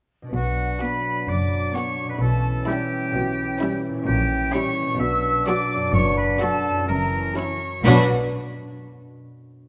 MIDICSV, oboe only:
0, 0, Header, 1, 2, 480
1, 0, Start_track
1, 0, Key_signature, 2, "minor"
1, 0, Tempo, 467654
1, 342, Time_signature, 4, 2, 24, 8
1, 6095, Tempo, 473934
1, 9888, End_track
2, 0, Start_track
2, 0, Title_t, "Oboe"
2, 0, Program_c, 0, 68
2, 356, Note_on_c, 0, 66, 52
2, 804, Note_off_c, 0, 66, 0
2, 825, Note_on_c, 0, 71, 52
2, 1316, Note_on_c, 0, 74, 54
2, 1331, Note_off_c, 0, 71, 0
2, 1793, Note_on_c, 0, 73, 59
2, 1808, Note_off_c, 0, 74, 0
2, 2141, Note_off_c, 0, 73, 0
2, 2147, Note_on_c, 0, 71, 41
2, 2264, Note_off_c, 0, 71, 0
2, 2270, Note_on_c, 0, 69, 60
2, 2740, Note_off_c, 0, 69, 0
2, 2746, Note_on_c, 0, 67, 61
2, 3914, Note_off_c, 0, 67, 0
2, 4175, Note_on_c, 0, 67, 74
2, 4645, Note_on_c, 0, 73, 66
2, 4660, Note_off_c, 0, 67, 0
2, 5118, Note_off_c, 0, 73, 0
2, 5124, Note_on_c, 0, 76, 81
2, 5601, Note_off_c, 0, 76, 0
2, 5610, Note_on_c, 0, 74, 67
2, 6082, Note_off_c, 0, 74, 0
2, 6086, Note_on_c, 0, 73, 78
2, 6323, Note_off_c, 0, 73, 0
2, 6331, Note_on_c, 0, 71, 63
2, 6564, Note_off_c, 0, 71, 0
2, 6570, Note_on_c, 0, 69, 70
2, 7041, Note_off_c, 0, 69, 0
2, 7046, Note_on_c, 0, 70, 65
2, 7523, Note_off_c, 0, 70, 0
2, 7538, Note_on_c, 0, 73, 58
2, 8013, Note_off_c, 0, 73, 0
2, 8019, Note_on_c, 0, 71, 66
2, 8222, Note_off_c, 0, 71, 0
2, 9888, End_track
0, 0, End_of_file